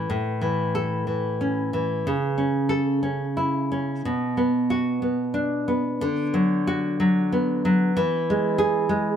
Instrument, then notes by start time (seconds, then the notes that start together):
nylon-string guitar
0.10 A2
0.41 E3
0.75 A4
1.07 E3
1.41 C#4
1.73 E3
2.07 C#3
2.38 C#4
2.69 A4
3.03 C#4
3.37 E4
3.72 C#4
4.05 B2
4.37 B3
4.70 F#4
5.02 B3
5.34 D4
5.68 B3
6.01 D3
6.34 F#3
6.67 F#4
7.00 F#3
7.33 B3
7.65 F#3
7.97 E3
8.30 G#3
8.58 G#4
8.89 G#3